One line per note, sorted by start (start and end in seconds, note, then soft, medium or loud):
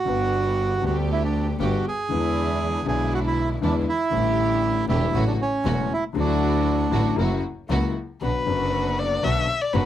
0.00 0.85 F#4 medium
0.04 0.80 G1 medium
0.04 0.80 G2 medium
0.04 0.79 D3 soft
0.04 0.79 G3 medium
0.04 0.79 G3 soft
0.04 0.79 B3 medium
0.04 0.80 B3 soft
0.04 0.80 D4 medium
0.04 0.81 B4 medium
0.81 1.56 D2 medium
0.81 0.82 D3 soft
0.81 1.56 D3 medium
0.81 1.56 G3 soft
0.81 1.56 B3 medium
0.81 1.56 B3 soft
0.81 1.56 D4 medium
0.81 1.56 G4 medium
0.81 1.57 G4 medium
0.86 0.97 F#4 medium
1.12 1.23 E4 medium
1.25 1.47 D4 medium
1.59 1.81 G1 medium
1.59 1.81 G2 medium
1.59 1.81 D3 medium
1.59 1.81 G3 soft
1.59 1.81 B3 medium
1.59 1.81 B3 soft
1.59 1.81 D4 medium
1.59 1.81 G4 medium
1.63 1.86 F#4 medium
1.88 2.86 G#4 loud
2.09 2.83 E2 medium
2.09 2.82 D3 medium
2.09 2.83 E3 medium
2.09 2.82 G#3 soft
2.09 2.82 G#3 medium
2.09 2.83 B3 medium
2.09 2.83 D4 medium
2.09 2.83 E4 medium
2.09 2.84 E4 medium
2.84 3.58 B1 medium
2.84 3.58 B2 medium
2.84 3.57 D3 medium
2.84 3.58 G#3 medium
2.84 3.59 B3 medium
2.84 3.58 D4 medium
2.84 3.58 E4 medium
2.84 3.59 E4 medium
2.84 3.13 G#4 medium
3.14 3.19 F#4 medium
3.27 3.49 E4 medium
3.61 3.83 E2 medium
3.61 3.83 D3 medium
3.61 3.83 E3 medium
3.61 3.83 G#3 medium
3.61 3.83 B3 medium
3.61 3.84 D4 medium
3.61 3.75 D4 medium
3.61 3.83 E4 medium
3.61 3.84 E4 medium
3.89 4.85 E4 medium
4.10 4.84 A1 medium
4.10 4.85 A1 medium
4.10 4.84 A2 medium
4.10 4.84 D3 medium
4.10 4.84 G3 medium
4.10 4.85 A3 medium
4.10 4.85 D4 medium
4.10 4.85 E4 medium
4.10 4.85 G4 medium
4.88 5.10 E1 medium
4.88 5.10 E2 medium
4.88 5.10 D3 medium
4.88 5.10 G3 medium
4.88 5.10 A3 medium
4.88 5.10 D4 medium
4.88 5.10 E4 medium
4.88 5.25 E4 medium
4.88 5.10 G4 medium
5.13 5.35 A1 medium
5.13 5.35 A2 medium
5.13 5.35 C#3 medium
5.13 5.35 F#3 medium
5.13 5.35 A3 medium
5.13 5.35 C#4 medium
5.13 5.35 E4 medium
5.13 5.35 F#4 medium
5.28 5.33 D4 medium
5.42 5.93 C#4 medium
5.65 5.86 E1 medium
5.65 5.87 E1 medium
5.65 5.86 E2 medium
5.65 5.86 C#3 medium
5.65 5.86 F#3 medium
5.65 5.86 A3 medium
5.65 5.86 C#4 medium
5.65 5.87 E4 medium
5.65 5.87 F#4 medium
5.93 6.04 E4 medium
6.14 6.88 D2 medium
6.14 6.88 D3 medium
6.14 6.88 F#3 medium
6.14 6.88 A3 medium
6.14 6.89 D4 medium
6.14 6.89 E4 medium
6.14 6.89 F#4 medium
6.20 7.16 D4 medium
6.91 7.13 A1 medium
6.91 7.14 A1 medium
6.91 7.13 A2 medium
6.91 7.13 D3 medium
6.91 7.13 F#3 medium
6.91 7.14 A3 medium
6.91 7.14 D4 medium
6.91 7.14 E4 medium
6.91 7.14 F#4 medium
7.16 7.40 F#1 medium
7.16 7.39 F#2 medium
7.16 7.39 C#3 medium
7.16 7.39 F#3 medium
7.16 7.39 A#3 medium
7.16 7.40 A#3 medium
7.16 7.39 E4 medium
7.16 7.40 E4 medium
7.16 7.40 F#4 medium
7.69 7.91 C#2 medium
7.69 7.92 C#2 medium
7.69 7.91 C#3 medium
7.69 7.92 F#3 medium
7.69 7.92 A#3 medium
7.69 7.92 E4 medium
7.69 7.92 F#4 medium
8.21 8.43 B1 soft
8.21 8.44 B1 soft
8.21 8.43 B2 soft
8.21 8.43 D3 soft
8.21 8.43 F#3 soft
8.21 8.43 B3 soft
8.21 8.43 D4 soft
8.21 8.43 F#4 soft
8.21 8.44 F#4 soft
8.21 9.00 B4 medium
8.45 9.19 F#1 medium
8.45 9.20 F#1 medium
8.45 9.19 F#2 medium
8.45 9.18 D3 medium
8.45 9.19 F#3 soft
8.45 9.20 B3 soft
8.45 9.20 B3 medium
8.45 9.20 D4 medium
8.45 9.20 F#4 medium
8.99 9.25 D5 medium
9.23 9.44 B1 medium
9.23 9.45 B1 medium
9.23 9.44 B2 medium
9.23 9.44 D3 medium
9.23 9.44 F#3 medium
9.23 9.44 B3 medium
9.23 9.44 D4 medium
9.23 9.44 F#4 medium
9.23 9.45 F#4 medium
9.23 9.63 E5 medium
9.62 9.75 D5 medium
9.73 9.86 F#1 medium
9.73 9.86 F#2 medium
9.73 9.86 D3 medium
9.73 9.86 F#3 medium
9.73 9.86 B3 medium
9.73 9.86 D4 medium
9.73 9.86 F#4 medium
9.73 9.86 B4 medium